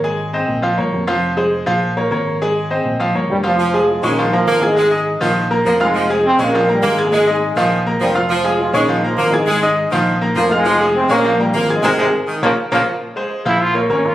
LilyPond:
<<
  \new Staff \with { instrumentName = "Grand piano" } { \time 4/4 \key bes \dorian \tempo 4 = 204 <aes aes' aes''>4 <c' c'' ees''>4 <f f' f''>8 <bes bes' des''>4 <f f' f''>8~ | <f f' f''>8 <aes aes' c''>4 <f f' f''>4 <bes bes' des''>8 <bes bes' des''>4 | <aes aes' aes''>4 <c' c'' ees''>4 <f f' f''>8 <bes bes' des''>4 <f f' f''>8 | r8 <aes aes' aes''>4 <des' des'' des'''>8 <f f' f''>8 <bes bes' bes''>4 <aes' aes'' aes'''>8 |
<aes aes' aes''>8 <ees' ees'' ees'''>4 <f f' f''>4 <bes bes' bes''>4 <f' f'' f'''>8~ | <f' f'' f'''>8 <aes aes' aes''>4 <des' des'' des'''>8 <f f' f''>8 <bes bes' bes''>4 <aes' aes'' aes'''>8 | <aes aes' aes''>8 <ees' ees'' ees'''>4 <f f' f''>4 <bes bes' bes''>4 <f' f'' f'''>8~ | <f' f'' f'''>8 <aes aes' aes''>4 <des' des'' des'''>8 <f f' f''>8 <bes bes' bes''>4 <aes' aes'' aes'''>8 |
<aes aes' aes''>8 <ees' ees'' ees'''>4 <f f' f''>4 <bes bes' bes''>4 <f' f'' f'''>8~ | <f' f'' f'''>8 <aes aes' aes''>4 <des' des'' des'''>8 <f f' f''>8 <bes bes' bes''>4 <aes' aes'' aes'''>8 | <aes' bes' c''>8 <aes' bes' c''>8 r4 <f' bes' des''>8 r8 <f' bes' des''>8 r8 | r8 <aes aes' c''>4 <f f' f''>4 <bes bes' des''>8 <bes bes' des''>4 | }
  \new Staff \with { instrumentName = "Trumpet" } { \time 4/4 \key bes \dorian r1 | r1 | r1 | r1 |
r1 | r1 | r1 | r1 |
r1 | r1 | r1 | r4. e'8 f'8 bes8 des'8 f'8 | }
  \new Staff \with { instrumentName = "Saxophone section" } { \clef bass \time 4/4 \key bes \dorian r1 | r1 | r1 | f4. aes4. bes4 |
aes4. ees4. f4 | f4. aes4. bes4 | aes4. ees4. f4 | f4. aes4. bes4 |
aes4. ees4. f4 | f4. aes4. bes4 | aes4. ees4. f4 | r1 | }
  \new Staff \with { instrumentName = "Trombone section" } { \clef bass \time 4/4 \key bes \dorian r1 | r1 | r2. <g, g>8 <f f'>8~ | <f f'>4 <f f'>8 <ees ees'>4 <f f'>4 <aes, aes>8~ |
<aes, aes>8 r2 r8 <bes, bes>8 <aes, aes>8~ | <aes, aes>8 r8 <c c'>8 <bes, bes>4 <g, g>8 \tuplet 3/2 { <aes, aes>4 <bes, bes>8 } | <aes, aes>8 <aes, aes>4 r4. <g, g>8 <f f'>8~ | <f f'>4 <f f'>8 <ees ees'>4 <f f'>4 <aes, aes>8~ |
<aes, aes>8 r2 r8 <bes, bes>8 <aes, aes>8~ | <aes, aes>8 r8 <c c'>8 <bes, bes>4 <g, g>8 \tuplet 3/2 { <f f'>4 <aes, aes>8 } | <c ees aes>8 <c ees aes>8 r4 <des f bes>8 r8 <des f bes>8 r8 | r1 | }
  \new Staff \with { instrumentName = "Fingered electric bass" } { \clef bass \time 4/4 \key bes \dorian aes,,4. bes,,4 g,,8 f,,4~ | f,,4. bes,,4. aes,,4~ | aes,,4. bes,,4 g,,8 f,,4~ | f,,4. bes,,4. aes,,4~ |
aes,,4. bes,,4. f,,4~ | f,,4. bes,,4. aes,,4~ | aes,,4. bes,,4. f,,4~ | f,,4. bes,,4. aes,,4~ |
aes,,4. bes,,4. f,,4~ | f,,4. bes,,4. aes,,4 | aes,,8 aes,,8 r4 bes,,8 r8 bes,,8 r8 | r4. bes,,4. aes,,4 | }
>>